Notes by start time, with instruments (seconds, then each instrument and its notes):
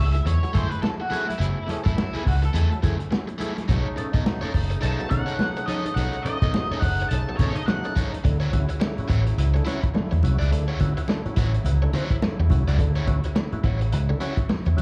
Already playing: fingered electric bass C#2, accordion A2 G#3 E4
0.00 lead electric guitar E5
0.15 muted overdriven electric guitar stroke, closed hi-hat
0.25 fingered electric bass E2, tonewheel organ E4 G#4, lead electric guitar C#5, muted overdriven electric guitar stroke, closed hi-hat
0.43 tonewheel organ F#3, muted overdriven electric guitar stroke, closed hi-hat
0.53 fingered electric bass F#2, overdriven electric guitar A3 E4 G#4, tonewheel organ A3 E4 G#4, lead electric guitar C5, kick, closed hi-hat, muted conga, low conga
0.70 lead electric guitar B4, muted overdriven electric guitar stroke, closed hi-hat
0.82 tonewheel organ F#3, lead electric guitar A4, muted overdriven electric guitar stroke, snare, high conga
1.00 lead electric guitar F#4, muted overdriven electric guitar stroke
1.10 overdriven electric guitar A3 E4 G#4, tonewheel organ A3 E4 G#4, closed hi-hat, high conga
1.28 lead electric guitar E4, tonewheel organ E4 G#4, muted overdriven electric guitar stroke, snare, closed hi-hat, high conga
1.38 fingered electric bass F#1, tonewheel organ F#3, overdriven electric guitar A3 E4 G#4, accordion A3, closed hi-hat
1.67 tonewheel organ A3 E4 G#4, lead electric guitar C#4, muted overdriven electric guitar stroke, muted fingered electric bass stroke, closed hi-hat, muted conga
1.84 fingered electric bass F#2, overdriven electric guitar A3 E4 A4, tonewheel organ E4 G#4, lead electric guitar E4, kick, closed hi-hat
1.97 tonewheel organ F#3, muted overdriven electric guitar stroke, snare, high conga
2.14 tonewheel organ A3 E4 G#4, overdriven electric guitar A3 E4 G#4, muted fingered electric bass stroke, closed hi-hat
2.25 fingered electric bass C#2, tonewheel organ E4 G#4, lead electric guitar F#4, muted overdriven electric guitar stroke, kick, open hi-hat
2.42 lead electric guitar A4, muted overdriven electric guitar stroke, closed hi-hat
2.53 fingered electric bass E2, overdriven electric guitar A3 E4 G#4, tonewheel organ E4 G#4, closed hi-hat
2.71 tonewheel organ F#3, muted overdriven electric guitar stroke, closed hi-hat
2.82 fingered electric bass F#2, overdriven electric guitar A3 E4 G#4, tonewheel organ A3 E4 G#4, kick, closed hi-hat, muted conga, low conga
2.99 muted overdriven electric guitar stroke, closed hi-hat
3.11 tonewheel organ F#3, muted overdriven electric guitar stroke, snare, high conga
3.28 muted overdriven electric guitar stroke, closed hi-hat
3.38 overdriven electric guitar A3 E4 G#4, tonewheel organ A3 E4 G#4, closed hi-hat, high conga
3.57 tonewheel organ E4 G#4, muted overdriven electric guitar stroke, snare, closed hi-hat, high conga
3.68 fingered electric bass B1, tonewheel organ B2 F#3, accordion C#3 D#4, overdriven electric guitar D#4 A4 C#5, kick, closed hi-hat
3.96 tonewheel organ C#4 D#4 A4, muted overdriven electric guitar stroke, muted fingered electric bass stroke, closed hi-hat, muted conga
4.14 fingered electric bass B2, tonewheel organ D#4 A4, overdriven electric guitar D#4 A4 D#5, kick, closed hi-hat
4.25 tonewheel organ B2 F#3, muted overdriven electric guitar stroke, snare, high conga
4.41 tonewheel organ C#4 D#4 A4, overdriven electric guitar D#4 A4 C#5, muted fingered electric bass stroke, closed hi-hat
4.53 fingered electric bass F#1, tonewheel organ D#4 A4, muted overdriven electric guitar stroke, kick, open hi-hat, muted conga
4.70 muted overdriven electric guitar stroke, closed hi-hat
4.81 fingered electric bass B1, overdriven electric guitar D#4 A4 C#5, tonewheel organ D#4 A4, lead electric guitar A5, closed hi-hat
5.00 tonewheel organ B2 F#3, closed hi-hat
5.10 fingered electric bass B2, tonewheel organ C#4 D#4 A4, lead electric guitar F#5, muted overdriven electric guitar stroke, kick, closed hi-hat, muted conga, low conga
5.26 overdriven electric guitar D#4 A4 C#5, closed hi-hat
5.39 tonewheel organ B2 F#3, muted overdriven electric guitar stroke, snare, high conga
5.57 muted overdriven electric guitar stroke, closed hi-hat
5.66 tonewheel organ C#4 D#4 A4, overdriven electric guitar D#4 A4 C#5, lead electric guitar D#5, closed hi-hat, high conga
5.86 tonewheel organ D#4 A4, muted overdriven electric guitar stroke, closed hi-hat, high conga
5.94 fingered electric bass B1, tonewheel organ B2 F#3, overdriven electric guitar D#4, lead electric guitar F#5, closed hi-hat
5.99 overdriven electric guitar A4 C#5
6.13 closed hi-hat
6.22 tonewheel organ C#4 D#4 A4, lead electric guitar D#5, muted fingered electric bass stroke, muted overdriven electric guitar stroke, closed hi-hat, muted conga
6.42 fingered electric bass B2, tonewheel organ D#4 A4, overdriven electric guitar D#4 A4 D#5, kick, closed hi-hat
6.54 tonewheel organ B2 F#3, muted overdriven electric guitar stroke, snare, high conga
6.71 tonewheel organ C#4 D#4 A4, overdriven electric guitar D#4 A4 C#5, muted fingered electric bass stroke
6.80 fingered electric bass F#1, tonewheel organ D#4 A4, lead electric guitar F#5, kick, open hi-hat, muted conga
6.84 muted overdriven electric guitar stroke
7.00 muted overdriven electric guitar stroke, closed hi-hat
7.09 fingered electric bass B1, tonewheel organ D#4 A4, lead electric guitar A5, muted overdriven electric guitar stroke, closed hi-hat
7.28 tonewheel organ B2 F#3, muted overdriven electric guitar stroke
7.37 fingered electric bass B2, tonewheel organ C#4 D#4 A4, overdriven electric guitar D#4, lead electric guitar C#5, kick, closed hi-hat, muted conga, low conga
7.42 overdriven electric guitar A4 C#5
7.55 lead electric guitar D#5, muted overdriven electric guitar stroke, closed hi-hat
7.66 tonewheel organ B2 F#3, lead electric guitar F#5, muted overdriven electric guitar stroke, snare, high conga
7.84 tonewheel organ C#4 D#4 A4, muted overdriven electric guitar stroke, closed hi-hat
7.96 overdriven electric guitar D#4 A4 C#5, tonewheel organ D#4 A4, kick, closed hi-hat, high conga
8.13 muted overdriven electric guitar stroke, closed hi-hat, high conga
8.24 fingered electric bass D2, accordion C#3 F#3 E4, tonewheel organ D3 A3, muted overdriven electric guitar stroke, kick, closed hi-hat
8.40 overdriven electric guitar E4 F#4 C#5, closed hi-hat
8.52 fingered electric bass D2, tonewheel organ C#4 E4 F#4, muted overdriven electric guitar stroke, kick, closed hi-hat, muted conga
8.69 tonewheel organ E4 F#4, muted overdriven electric guitar stroke, closed hi-hat
8.80 tonewheel organ D3 A3, muted overdriven electric guitar stroke, snare, high conga
8.98 tonewheel organ C#4 E4 F#4, muted fingered electric bass stroke, closed hi-hat
9.08 fingered electric bass A1, overdriven electric guitar E4 F#4 C#5, tonewheel organ E4 F#4, kick, closed hi-hat, muted conga
9.26 muted overdriven electric guitar stroke, closed hi-hat
9.38 fingered electric bass C#2, tonewheel organ E4 F#4, closed hi-hat
9.54 tonewheel organ D3 A3, muted overdriven electric guitar stroke, closed hi-hat
9.65 tonewheel organ C#4 E4 F#4, overdriven electric guitar E4 F#4 C#5, snare, closed hi-hat, muted conga
9.83 muted overdriven electric guitar stroke, kick, closed hi-hat
9.94 tonewheel organ D3 A3, muted overdriven electric guitar stroke, snare, high conga
10.11 fingered electric bass E2, muted overdriven electric guitar stroke, closed hi-hat
10.23 fingered electric bass C2, tonewheel organ C#4 E4 F#4, closed hi-hat, high conga
10.39 fingered electric bass C#2, tonewheel organ E4 F#4, overdriven electric guitar E4 F#4 D5, closed hi-hat
10.51 fingered electric bass D2, tonewheel organ D3 A3, muted overdriven electric guitar stroke, closed hi-hat
10.68 overdriven electric guitar E4 F#4 C#5
10.80 fingered electric bass D2, tonewheel organ C#4 E4 F#4, muted overdriven electric guitar stroke, kick, closed hi-hat, muted conga
10.97 tonewheel organ E4 F#4, muted overdriven electric guitar stroke, closed hi-hat
11.08 tonewheel organ D3 A3, muted overdriven electric guitar stroke, snare, high conga
11.26 tonewheel organ C#4 E4 F#4, muted fingered electric bass stroke, closed hi-hat
11.36 fingered electric bass A1, overdriven electric guitar E4 F#4 C#5, tonewheel organ E4 F#4, kick, closed hi-hat, muted conga
11.54 muted overdriven electric guitar stroke, closed hi-hat
11.64 fingered electric bass C#2, tonewheel organ E4 F#4, closed hi-hat, low conga
11.82 tonewheel organ D3 A3, muted overdriven electric guitar stroke
11.93 tonewheel organ C#4 E4 F#4, overdriven electric guitar E4 F#4 C#5, closed hi-hat, muted conga, low conga
12.10 muted overdriven electric guitar stroke, kick, closed hi-hat
12.22 tonewheel organ D3 A3, muted overdriven electric guitar stroke, snare, high conga
12.40 fingered electric bass E2, muted overdriven electric guitar stroke
12.50 fingered electric bass C2, tonewheel organ C#4 E4 F#4, kick, closed hi-hat, high conga
12.68 fingered electric bass C#2, tonewheel organ E4 F#4, overdriven electric guitar E4 F#4 D5, closed hi-hat
12.79 fingered electric bass D2, tonewheel organ D3 A3, muted overdriven electric guitar stroke, kick, closed hi-hat
12.95 overdriven electric guitar E4 F#4 C#5, closed hi-hat
13.07 fingered electric bass D2, tonewheel organ C#4 E4 F#4, muted overdriven electric guitar stroke, kick, closed hi-hat, muted conga
13.24 tonewheel organ E4 F#4, muted overdriven electric guitar stroke, closed hi-hat
13.36 tonewheel organ D3 A3, muted overdriven electric guitar stroke, snare, high conga
13.52 tonewheel organ C#4 E4 F#4, muted fingered electric bass stroke, closed hi-hat
13.64 fingered electric bass A1, overdriven electric guitar E4 F#4 C#5, tonewheel organ E4 F#4, kick, closed hi-hat, muted conga
13.81 muted overdriven electric guitar stroke, closed hi-hat
13.92 fingered electric bass C#2, tonewheel organ E4 F#4, closed hi-hat
14.09 tonewheel organ D3 A3, muted overdriven electric guitar stroke
14.20 tonewheel organ C#4 E4 F#4, overdriven electric guitar E4 F#4 C#5, closed hi-hat, muted conga
14.37 muted overdriven electric guitar stroke, kick, closed hi-hat
14.49 muted overdriven electric guitar stroke, snare, high conga
14.65 fingered electric bass E2, muted overdriven electric guitar stroke, closed hi-hat
14.77 fingered electric bass D2, tonewheel organ C#4 E4 F#4, closed hi-hat, high conga